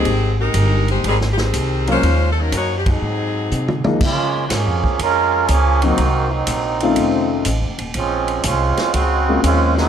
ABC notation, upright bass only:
X:1
M:4/4
L:1/8
Q:"Swing" 1/4=122
K:Ab
V:1 name="Upright bass" clef=bass
A,,,2 G,,,2 A,,,2 C,,2 | E,,2 _G,,2 A,,2 C, z | [K:Db] D,2 (3A,, F,, D,, F,,2 D,,2 | C,,2 B,,,2 F,,,2 (3=A,,, F,,, E,,, |
B,,,2 C,, z D,,2 E,,2 |]